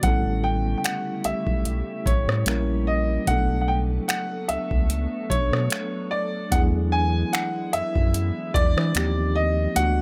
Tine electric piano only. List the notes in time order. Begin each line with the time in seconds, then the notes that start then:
0.01 G3 B3 C#4 E4
0.07 A4
2.46 G3 A#3 C#4 E4 A#4
3.26 F#3 A3 B3 D4
3.31 A4
6.50 F#3 B3 D4 E4
6.56 G#4
8.95 F3 A#3 C4 D#4 G4
9.74 E3 A3 B3 D4
9.80 F#4